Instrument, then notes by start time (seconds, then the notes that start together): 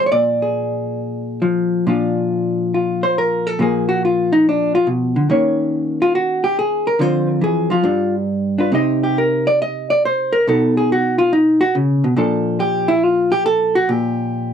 hollow-body jazz guitar
Already playing: F3
0.06 C#5
0.12 A#2 D5
0.42 G#4
1.42 F3
1.87 A#2 F3 D4 F4
2.74 F4
3.03 C5
3.18 A#4
3.47 A4
3.59 A#2 F3 A#3 G#4
3.89 F#4
4.05 F4
4.33 D#4
4.49 D4
4.75 F4
4.87 B2
5.16 D3
5.30 D#3 A#3 C#4 C#5
6.02 F4
6.15 F#4
6.44 G4
6.59 G#4
6.87 A#4
6.99 D3 F3 C4 F4 C5
7.29 A#4
7.41 E3 G#4
7.70 F3 F4
7.84 G2 G3 D4
8.58 D4 F4 B4
8.72 C3 C4 D#4 G4 D#5
9.03 G4
9.18 A#4
9.47 D5
9.62 D#5
9.90 D5
10.05 C5
10.33 A#4
10.47 B2 B3 D#4 A4
10.77 G#4
10.92 F#4
11.18 F4
11.33 D#4
11.61 F#4
11.75 C#3
12.04 B2
12.17 A#2 F3 D4 A4
12.60 G4
12.88 E4
13.04 F4
13.32 G4
13.46 A4
13.75 F#4
13.89 A#2 G4